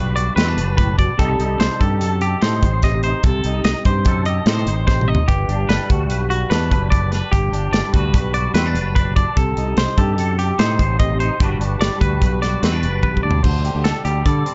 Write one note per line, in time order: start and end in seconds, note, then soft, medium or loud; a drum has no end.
0.00 0.29 B1 medium
0.00 0.77 G2 medium
0.00 1.18 G3 medium
0.00 0.36 D4 soft
0.00 0.15 F#4 medium
0.00 0.15 B4 medium
0.00 0.55 B4 medium
0.16 1.16 F#4 medium
0.16 0.36 D5 medium
0.16 closed hi-hat medium
0.36 0.58 E2 medium
0.36 0.47 C4 medium
0.36 0.76 B4 medium
0.36 snare loud
0.36 closed hi-hat medium
0.47 1.19 D4 soft
0.56 1.07 F#1 medium
0.56 1.16 B4 medium
0.56 closed hi-hat medium
0.77 0.97 A2 medium
0.77 0.98 B4 medium
0.77 kick medium
0.77 closed hi-hat medium
0.98 1.17 B2 medium
0.98 1.19 D5 medium
0.98 kick medium
0.98 closed hi-hat medium
1.18 1.35 C2 medium
1.18 2.82 C3 medium
1.18 2.05 G3 medium
1.18 1.39 D#4 medium
1.18 1.81 G4 medium
1.18 1.60 A4 medium
1.18 2.02 A4 medium
1.18 kick medium
1.18 closed hi-hat medium
1.39 1.56 C2 medium
1.39 2.42 D#4 medium
1.39 closed hi-hat medium
1.59 1.68 C2 medium
1.59 1.80 C5 medium
1.59 snare loud
1.59 closed hi-hat medium
1.81 2.01 G2 medium
1.81 2.22 G4 medium
1.81 2.21 A4 medium
1.81 kick medium
1.81 closed hi-hat medium
2.01 2.34 F#2 medium
2.01 2.63 A4 medium
2.01 closed hi-hat medium
2.21 2.42 G4 medium
2.21 3.87 G4 medium
2.21 closed hi-hat medium
2.42 2.64 A2 medium
2.42 3.04 D#4 medium
2.42 2.83 C5 medium
2.42 snare loud
2.42 closed hi-hat medium
2.63 3.12 A1 medium
2.63 3.22 C5 medium
2.63 kick medium
2.63 closed hi-hat medium
2.82 3.22 C3 medium
2.82 3.03 D#5 medium
2.82 kick medium
2.82 snare soft
2.82 closed hi-hat medium
3.03 3.22 D#4 medium
3.03 3.24 C5 medium
3.03 closed hi-hat medium
3.23 3.40 C2 medium
3.23 4.86 C3 medium
3.23 3.64 A4 medium
3.23 kick loud
3.23 closed hi-hat medium
3.44 3.61 C2 medium
3.44 4.47 D#4 medium
3.44 closed hi-hat medium
3.64 3.73 C2 medium
3.64 3.85 D#5 medium
3.64 snare loud
3.64 closed hi-hat medium
3.85 4.06 G2 medium
3.85 4.27 G4 medium
3.85 4.26 C5 medium
3.85 kick medium
3.85 closed hi-hat medium
4.05 4.39 F#2 medium
4.05 4.67 A4 medium
4.05 kick medium
4.05 closed hi-hat medium
4.25 5.89 G4 soft
4.25 4.47 D#5 medium
4.25 closed hi-hat medium
4.46 4.68 A2 medium
4.46 5.06 D#4 medium
4.46 4.86 C5 medium
4.46 snare loud
4.46 closed hi-hat medium
4.66 5.16 A1 medium
4.66 5.26 C5 medium
4.66 closed hi-hat medium
4.87 5.26 C3 medium
4.87 5.08 C5 medium
4.87 kick medium
4.87 snare soft
5.01 mid tom medium
5.08 5.26 D#4 soft
5.08 5.28 D#5 medium
5.15 floor tom medium
5.28 5.45 G1 medium
5.28 6.92 G2 medium
5.28 5.69 G4 medium
5.28 kick loud
5.28 closed hi-hat medium
5.48 5.65 G1 medium
5.48 6.49 D4 medium
5.48 closed hi-hat medium
5.69 5.77 G1 medium
5.69 7.73 G3 medium
5.69 5.90 B4 medium
5.69 snare loud
5.69 closed hi-hat medium
5.90 6.10 D2 medium
5.90 6.30 F#4 medium
5.90 kick medium
5.90 closed hi-hat medium
6.10 6.43 B1 medium
6.10 6.70 B4 medium
6.10 closed hi-hat medium
6.30 6.51 F#4 medium
6.30 7.30 F#4 medium
6.30 closed hi-hat medium
6.50 6.73 E2 medium
6.50 7.12 D4 medium
6.50 6.90 B4 medium
6.50 snare loud
6.50 closed hi-hat medium
6.71 7.21 F#1 medium
6.71 7.30 B4 medium
6.71 kick medium
6.71 closed hi-hat medium
6.90 7.11 D5 medium
6.90 kick medium
6.90 closed hi-hat medium
7.11 7.31 D4 soft
7.11 7.32 B4 medium
7.11 snare soft
7.11 closed hi-hat medium
7.32 7.49 G1 medium
7.32 8.96 G2 medium
7.32 7.73 G4 medium
7.32 kick loud
7.32 closed hi-hat medium
7.52 7.69 G1 medium
7.52 8.55 D4 medium
7.52 closed hi-hat medium
7.72 7.81 G1 medium
7.72 10.22 G3 medium
7.72 7.93 D5 medium
7.72 snare loud
7.72 closed hi-hat medium
7.93 8.14 D2 medium
7.93 8.34 F#4 medium
7.93 8.34 B4 medium
7.93 kick medium
7.93 closed hi-hat medium
8.14 8.47 B1 medium
8.14 8.75 B4 medium
8.14 kick medium
8.14 closed hi-hat medium
8.34 9.35 F#4 soft
8.34 8.54 D5 medium
8.34 closed hi-hat medium
8.54 8.76 E2 medium
8.54 8.66 C4 medium
8.54 8.94 B4 medium
8.54 snare loud
8.54 closed hi-hat medium
8.66 9.16 D4 soft
8.74 9.24 F#1 medium
8.74 9.35 B4 medium
8.74 closed hi-hat medium
8.95 9.16 B4 medium
8.95 kick medium
8.95 closed hi-hat medium
9.16 9.35 D4 medium
9.16 9.37 D5 medium
9.16 kick medium
9.16 closed hi-hat medium
9.36 9.53 C2 medium
9.36 10.98 C3 medium
9.36 9.78 A4 medium
9.36 kick loud
9.36 closed hi-hat medium
9.57 9.74 C2 medium
9.57 10.58 D#4 medium
9.57 closed hi-hat medium
9.77 9.86 C2 medium
9.77 9.98 C5 medium
9.77 snare loud
9.77 closed hi-hat medium
9.97 10.18 G2 medium
9.97 10.40 G4 medium
9.97 10.38 A4 medium
9.97 kick medium
9.97 closed hi-hat medium
10.18 10.51 F#2 medium
10.18 10.80 A4 medium
10.18 closed hi-hat medium
10.39 10.59 G4 medium
10.39 11.41 G4 medium
10.39 closed hi-hat medium
10.59 10.81 A2 medium
10.59 11.20 D#4 medium
10.59 10.99 C5 medium
10.59 snare loud
10.59 closed hi-hat medium
10.79 11.29 A1 medium
10.79 11.39 C5 medium
10.79 kick medium
10.79 closed hi-hat medium
10.99 11.38 C3 medium
10.99 11.20 D#5 medium
10.99 kick medium
10.99 closed hi-hat medium
11.20 11.39 D#4 medium
11.20 11.41 C5 medium
11.20 closed hi-hat medium
11.39 11.57 G1 medium
11.39 13.02 G2 medium
11.39 11.80 G3 medium
11.39 11.59 D4 medium
11.39 12.01 F#4 medium
11.39 12.20 B4 medium
11.39 kick loud
11.39 closed hi-hat medium
11.59 11.76 G1 medium
11.59 12.62 D4 medium
11.59 closed hi-hat medium
11.80 11.89 G1 medium
11.80 14.03 G3 medium
11.80 12.00 D5 medium
11.80 snare loud
11.80 closed hi-hat medium
12.01 12.22 D2 medium
12.01 12.41 F#4 medium
12.01 12.42 B4 medium
12.01 kick medium
12.01 closed hi-hat medium
12.22 12.55 B1 medium
12.22 12.83 B4 medium
12.22 kick medium
12.22 closed hi-hat medium
12.42 13.42 F#4 medium
12.42 12.63 D5 medium
12.42 snare soft
12.42 closed hi-hat medium
12.62 12.85 E2 medium
12.62 12.72 C4 medium
12.62 13.02 B4 medium
12.62 snare medium
12.62 closed hi-hat medium
12.72 13.23 D4 soft
12.83 13.00 F#1 medium
12.83 13.42 B4 medium
12.83 closed hi-hat medium
13.03 13.22 B1 medium
13.03 13.44 G2 medium
13.03 13.23 B4 medium
13.03 kick medium
13.03 high tom soft
13.17 kick medium
13.23 13.42 D2 medium
13.23 13.42 D4 soft
13.23 13.43 D5 medium
13.31 floor tom medium
13.43 13.69 D2 medium
13.43 14.54 D3 medium
13.43 13.84 C5 medium
13.43 kick medium
13.43 crash medium
13.65 14.05 G4 soft
13.65 closed hi-hat soft
13.75 13.91 D2 medium
13.84 14.04 A4 medium
13.84 14.26 A4 medium
13.84 snare loud
13.84 closed hi-hat medium
14.04 14.22 D2 medium
14.04 14.54 G3 medium
14.04 14.26 G4 medium
14.04 14.54 G4 medium
14.04 closed hi-hat medium
14.25 14.42 D3 medium
14.25 14.54 A4 medium
14.25 14.54 D5 medium
14.25 kick medium
14.25 closed hi-hat medium
14.45 14.54 C4 soft
14.45 closed hi-hat medium